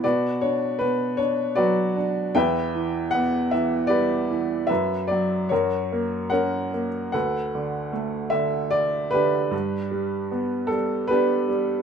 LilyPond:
<<
  \new Staff \with { instrumentName = "Upright piano" } { \time 3/4 \key b \minor \tempo 4 = 76 << { d''8 cis''8 b'8 cis''8 d''4 | g''4 fis''8 e''8 d''4 | e''8 d''8 cis''4 fis''8. r16 | fis''4 r8 e''8 d''8 b'8~ |
b'4. a'8 b'4 | } \\ { <fis' b'>4. r8 <fis' b'>4 | <b' e''>4. r8 <g' b'>4 | b'4 <fis' ais'>4 <ais' cis''>4 | <a' b'>4. r4 <d' g'>8~ |
<d' g'>4. r8 <d' g'>4 | } >> }
  \new Staff \with { instrumentName = "Upright piano" } { \clef bass \time 3/4 \key b \minor b,8 d'8 b,8 d'8 fis8 d'8 | e,8 e8 b8 e8 g8 e8 | fis,8 fis8 fis,8 ais8 cis'8 ais8 | d,8 d8 a8 d4 d8 |
g,8 g8 b8 g8 b8 g8 | }
>>